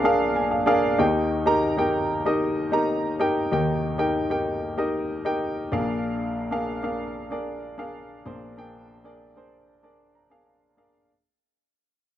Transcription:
0.00 0.63 A#1 medium
0.00 0.63 A#2 medium
0.00 0.04 D4 medium
0.00 0.56 D4 medium
0.00 0.04 G#4 medium
0.00 0.04 A#4 medium
0.00 1.01 D5 medium
0.00 0.05 F5 medium
0.00 0.36 G#5 medium
0.04 0.57 G#4 medium
0.04 0.57 A#4 medium
0.04 0.50 F5 medium
0.36 0.51 G#5 medium
0.51 0.66 F5 medium
0.66 0.93 D4 medium
0.66 0.93 G#4 medium
0.66 0.94 A#4 medium
0.66 0.94 F5 medium
0.98 3.48 D#2 medium
0.98 3.48 D#3 medium
0.98 1.38 D#4 medium
0.98 1.38 G4 medium
0.98 1.38 A#4 medium
0.98 1.38 G5 medium
1.46 1.72 D#4 medium
1.46 1.72 G4 medium
1.46 1.73 A#4 medium
1.46 1.73 A#5 medium
1.77 2.17 D#4 medium
1.77 2.17 G4 medium
1.77 2.17 A#4 medium
1.77 2.17 G5 medium
2.25 2.65 D#4 medium
2.25 2.65 G4 medium
2.25 2.65 A#4 medium
2.25 2.65 D#5 medium
2.72 3.12 D#4 medium
2.72 3.12 G4 medium
2.72 3.12 A#4 medium
2.72 3.12 A#5 medium
3.19 3.46 D#4 medium
3.19 3.46 G4 medium
3.19 3.46 A#4 medium
3.19 3.47 G5 medium
3.51 5.69 D#2 medium
3.51 5.69 D#3 medium
3.51 3.91 D#4 medium
3.51 3.91 G4 medium
3.51 3.91 A#4 medium
3.51 3.91 G5 medium
3.98 4.25 D#4 medium
3.98 4.25 G4 medium
3.98 4.25 A#4 medium
3.98 4.25 G5 medium
4.30 4.70 D#4 medium
4.30 4.70 G4 medium
4.30 4.70 A#4 medium
4.30 4.70 G5 medium
4.77 5.17 D#4 medium
4.77 5.17 G4 medium
4.77 5.17 A#4 medium
4.77 5.17 D#5 medium
5.25 5.64 D#4 medium
5.25 5.64 G4 medium
5.25 5.65 A#4 medium
5.25 5.65 G5 medium
5.72 8.21 A#1 medium
5.72 8.21 A#2 medium
5.72 6.37 D4 medium
5.72 6.38 G#4 medium
5.72 6.38 A#4 medium
5.72 6.38 F5 medium
6.51 6.78 D4 medium
6.51 6.78 G#4 medium
6.51 6.78 A#4 medium
6.51 6.78 F5 medium
6.83 7.22 D4 medium
6.83 7.22 G#4 medium
6.83 7.23 A#4 medium
6.83 7.23 F5 medium
7.30 7.70 D4 medium
7.30 7.70 G#4 medium
7.30 7.70 A#4 medium
7.30 7.70 D5 medium
7.78 8.17 D4 medium
7.78 8.17 G#4 medium
7.78 8.17 A#4 medium
7.78 8.18 F5 medium
8.25 10.74 A#1 medium
8.25 10.75 A#2 medium
8.25 8.52 D4 medium
8.25 8.52 G#4 medium
8.25 8.52 A#4 medium
8.25 8.52 C5 medium
8.57 8.96 D4 medium
8.57 8.96 G#4 medium
8.57 8.97 A#4 medium
8.57 8.97 G5 medium
9.04 9.30 D4 medium
9.04 9.31 G#4 medium
9.04 9.31 A#4 medium
9.04 9.31 D5 medium
9.36 9.75 D4 medium
9.36 9.75 G#4 medium
9.36 9.76 A#4 medium
9.36 9.76 C5 medium
9.83 10.22 D4 medium
9.83 10.22 G#4 medium
9.83 10.23 A#4 medium
9.83 10.23 D5 medium
10.15 10.30 A#5 medium
10.30 10.70 D4 medium
10.30 10.70 G#4 medium
10.30 10.70 A#4 medium
10.30 10.45 F5 medium
10.30 10.46 G#5 medium
10.46 10.76 F5 medium
10.77 11.04 D4 medium
10.77 11.04 G#4 medium
10.77 11.04 A#4 medium
10.77 11.07 D5 medium
10.77 11.04 F5 medium

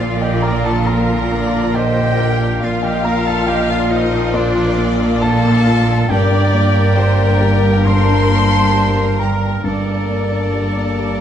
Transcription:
0.00 2.58 A#1 medium
0.00 0.84 A#2 medium
0.00 2.58 A#2 medium
0.00 2.57 D3 medium
0.00 1.10 F3 medium
0.00 1.32 A#3 medium
0.00 2.57 A#3 medium
0.00 0.14 D4 medium
0.00 0.20 F4 medium
0.00 0.35 F4 medium
0.00 2.58 F4 medium
0.00 0.21 D5 loud
0.00 0.88 D5 medium
0.00 0.18 F5 medium
0.00 0.22 F5 loud
0.21 0.45 G4 medium
0.21 0.57 A#4 medium
0.21 0.43 D#5 medium
0.21 0.44 G5 medium
0.21 0.42 G5 medium
0.42 0.79 F4 medium
0.42 0.67 A#4 medium
0.42 0.66 G5 loud
0.42 0.63 A#5 medium
0.42 0.65 A#5 medium
0.65 1.01 D4 medium
0.65 0.89 A4 medium
0.65 0.87 F5 medium
0.65 0.85 A5 loud
0.65 0.87 A5 medium
0.86 2.58 A#2 medium
0.86 1.77 A#4 medium
0.86 1.32 A#4 medium
0.86 1.74 F5 medium
0.86 1.70 A#5 loud
0.86 1.75 A#5 medium
1.10 1.45 F3 medium
1.31 1.67 A#3 medium
1.31 1.75 D5 medium
1.54 1.88 D4 medium
1.74 2.11 F4 medium
1.74 2.65 G4 loud
1.74 2.19 C5 medium
1.74 2.34 D#5 loud
1.74 2.58 G5 loud
1.74 2.62 G5 loud
1.97 2.32 A#4 medium
2.19 2.53 F4 medium
2.19 2.62 A#4 medium
2.40 2.75 D4 medium
2.60 6.06 A#1 medium
2.60 4.30 A#2 medium
2.60 6.05 A#2 medium
2.60 6.05 A#3 medium
2.60 6.05 F4 medium
2.60 6.06 F4 medium
2.60 2.86 F4 medium
2.60 2.84 D5 medium
2.60 2.81 F5 medium
2.60 2.83 F5 medium
2.60 4.35 F5 loud
2.83 3.18 F3 medium
2.83 3.07 G4 medium
2.83 3.05 D#5 medium
2.83 3.05 G5 medium
2.83 3.03 G5 medium
3.04 3.40 A#3 medium
3.04 3.29 A#4 medium
3.04 3.27 G5 medium
3.04 3.26 A#5 medium
3.04 3.25 A#5 loud
3.25 3.61 D4 medium
3.25 3.50 A4 medium
3.25 3.49 F5 medium
3.25 3.47 A5 medium
3.25 3.47 A5 loud
3.46 3.82 F4 medium
3.46 3.70 G4 medium
3.46 3.69 D#5 loud
3.46 3.69 G5 loud
3.46 3.67 G5 loud
3.68 3.93 F4 medium
3.68 4.04 A#4 medium
3.68 3.91 D5 medium
3.68 3.90 F5 medium
3.68 3.90 F5 loud
3.90 4.36 D#4 medium
3.90 4.25 F4 medium
3.90 4.34 C5 loud
3.90 4.30 D#5 loud
3.90 4.33 D#5 loud
4.11 4.46 D4 medium
4.33 6.05 A#2 medium
4.33 4.95 D4 loud
4.33 5.23 A#4 loud
4.33 4.78 C5 medium
4.33 5.22 D5 loud
4.33 5.19 D5 loud
4.56 4.92 F3 medium
4.77 5.13 A#3 medium
4.77 6.10 A#3 loud
5.00 5.35 D4 medium
5.21 5.57 F4 medium
5.21 6.12 A4 loud
5.21 6.10 F5 loud
5.21 6.05 A5 loud
5.21 6.09 A5 loud
5.45 5.79 A#3 medium
5.66 6.01 F4 medium
5.88 6.09 D4 medium
6.09 9.61 G1 medium
6.09 7.82 G2 medium
6.09 9.61 G2 medium
6.09 9.49 A#3 medium
6.09 9.49 D4 medium
6.09 7.88 G4 medium
6.09 9.61 A#4 medium
6.09 7.59 D5 loud
6.09 6.95 D5 loud
6.09 7.82 G5 loud
6.09 7.83 G5 loud
6.31 6.66 D3 medium
6.54 6.88 A#3 medium
6.75 7.10 D4 medium
6.97 7.32 G4 medium
6.97 7.42 C5 medium
7.19 7.55 A#4 medium
7.41 7.77 G4 medium
7.41 8.74 A#4 medium
7.64 7.99 D4 medium
7.86 9.60 G2 medium
7.86 9.19 C5 loud
7.86 9.20 A5 loud
7.86 9.19 C6 loud
7.86 9.16 C6 loud
8.09 8.44 D3 medium
8.31 8.66 A#3 medium
8.52 8.88 D4 medium
8.74 9.10 G4 medium
8.74 9.19 A#4 medium
8.96 9.33 A#4 medium
9.19 9.55 G4 medium
9.19 9.67 A#4 medium
9.19 9.65 A#4 medium
9.19 9.65 G5 medium
9.19 9.61 A#5 medium
9.19 9.65 A#5 medium
9.42 9.78 D4 medium
9.64 11.21 G1 medium
9.64 11.21 G2 medium
9.64 11.21 A#3 medium
9.64 11.21 D4 medium
9.64 11.21 A4 medium
9.64 11.21 A#4 medium
9.64 11.21 D5 medium
9.64 11.21 A5 medium
9.87 10.23 D3 soft
10.08 10.45 A#3 soft
10.31 10.68 D4 soft
10.54 10.90 G4 soft
10.77 11.13 A#3 soft
10.99 11.21 G4 soft

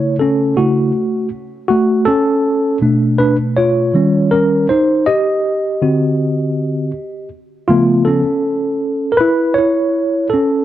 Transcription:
0.00 0.53 C#3 medium
0.00 0.53 A3 soft
0.00 0.16 E4 medium
0.00 0.15 C#5 loud
0.19 0.55 C#4 medium
0.19 0.58 A4 medium
0.57 0.91 C#3 soft
0.57 1.29 A3 medium
0.57 0.91 E4 medium
0.57 1.28 F#4 medium
1.68 2.05 A3 medium
1.68 2.08 F#4 medium
2.05 2.78 C#4 medium
2.05 2.77 A4 loud
2.81 3.90 B2 medium
2.81 3.91 A3 medium
2.81 3.19 D4 medium
3.18 3.37 D4 medium
3.18 3.36 B4 medium
3.57 4.28 F4 medium
3.57 4.34 C#5 medium
3.94 4.65 D#3 medium
3.94 4.66 G3 medium
3.94 4.31 C#4 medium
4.31 4.67 C#4 medium
4.31 4.66 A#4 medium
4.69 5.05 D#4 medium
4.69 5.08 C5 loud
5.06 7.28 G4 medium
5.06 7.28 D#5 medium
5.82 6.90 D3 medium
5.82 6.91 C4 medium
5.82 6.91 F#4 medium
7.68 8.22 C#3 medium
7.68 8.22 F3 soft
7.68 8.05 A3 medium
7.68 8.22 B3 medium
7.68 8.07 F4 medium
8.05 9.10 C#4 medium
8.05 9.16 A4 medium
9.12 9.19 A#4 medium
9.17 9.55 E4 medium
9.17 9.57 B4 loud
9.54 10.27 C#5 loud
9.58 10.29 E4 medium
10.30 10.65 C#4 medium
10.30 10.65 A4 medium

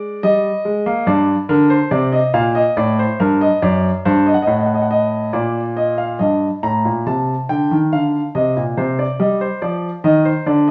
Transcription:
0.00 0.20 G#3 medium
0.00 0.21 D5 medium
0.23 0.49 G3 medium
0.23 1.05 D#5 medium
0.65 0.85 G#3 medium
0.86 1.07 A#3 medium
1.07 1.33 G2 medium
1.07 1.33 D5 medium
1.49 1.76 D3 medium
1.49 1.70 A#4 medium
1.70 1.91 C5 medium
1.91 2.18 C3 medium
1.91 2.12 D5 medium
2.12 2.34 D#5 medium
2.34 2.60 A#2 medium
2.34 2.55 F5 medium
2.55 2.76 D#5 medium
2.77 3.04 A2 medium
2.77 2.98 D5 medium
2.99 3.20 C5 medium
3.20 3.46 G2 medium
3.20 3.41 A#4 medium
3.41 3.62 D#5 medium
3.62 3.89 F#2 medium
3.62 3.89 D5 medium
4.05 4.32 G2 medium
4.05 4.26 C5 medium
4.26 4.34 D#5 medium
4.34 4.42 F#5 medium
4.42 4.50 D#5 medium
4.47 5.30 A2 medium
4.47 4.58 F#5 medium
4.58 4.67 D#5 soft
4.66 4.74 F#5 soft
4.74 4.82 D#5 medium
4.82 4.90 F#5 medium
4.91 5.32 D#5 medium
5.33 6.17 A#2 medium
5.33 5.60 D5 medium
5.77 5.98 D#5 medium
5.98 6.19 F5 medium
6.19 6.47 G2 medium
6.19 6.46 D#5 medium
6.63 6.84 A2 medium
6.63 6.90 A#5 medium
6.85 7.06 A#2 medium
7.06 7.33 C3 soft
7.06 7.33 A5 medium
7.49 7.70 D3 medium
7.49 7.76 G5 medium
7.71 7.92 D#3 medium
7.93 8.19 D3 medium
7.93 8.19 F5 medium
8.35 8.56 C3 medium
8.35 8.61 D#5 medium
8.57 8.77 A#2 medium
8.77 9.04 C3 medium
8.77 8.98 C5 medium
8.99 9.19 D5 medium
9.20 9.46 G3 medium
9.20 9.40 D#5 medium
9.41 9.62 C5 medium
9.62 9.88 F3 medium
9.62 9.88 D5 medium
10.04 10.30 D#3 medium
10.04 10.25 D#5 medium
10.25 10.46 C5 medium
10.46 10.71 D3 medium
10.46 10.67 D5 medium
10.68 10.71 D#5 medium

